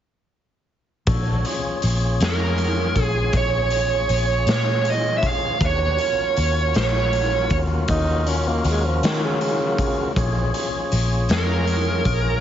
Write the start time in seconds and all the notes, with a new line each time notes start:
1.07 A#1 D4 F#4 A4 C#5, kick, closed hi-hat
1.45 C#4 F4 G#4 C#5, closed hi-hat
1.82 A#1, closed hi-hat
2.20 F2, snare, closed hi-hat
2.25 A#4
2.58 closed hi-hat
2.96 A#1, kick, closed hi-hat
3.05 G#4
3.33 A#1 C#5, kick, closed hi-hat
3.70 closed hi-hat
4.09 A#1, closed hi-hat
4.47 A#2, snare, closed hi-hat
4.52 C#5
4.85 closed hi-hat
4.90 D#5
5.18 E5
5.23 kick, closed hi-hat
5.27 F5
5.61 D#2 D4 F#4 G4 B4, kick, closed hi-hat
5.65 C#5
5.98 C#4 F4 F#4 A#4, closed hi-hat
6.37 D#2, closed hi-hat
6.74 A#1 C#5, snare, closed hi-hat
7.13 closed hi-hat
7.50 D#2, kick, closed hi-hat
7.88 D#2 D#4, kick, closed hi-hat
8.27 C#4, closed hi-hat
8.48 A#3
8.64 D#2, closed hi-hat
8.70 G#3
8.85 F3
9.03 D#3, snare, closed hi-hat
9.24 C#3
9.41 C#3, closed hi-hat
9.78 kick, closed hi-hat
10.16 A#1 C#4 F4 G#4 C#5, kick, closed hi-hat
10.54 closed hi-hat
10.92 A#1, closed hi-hat
11.29 F2 A#4, snare, closed hi-hat
11.67 closed hi-hat
12.05 A#1, kick, closed hi-hat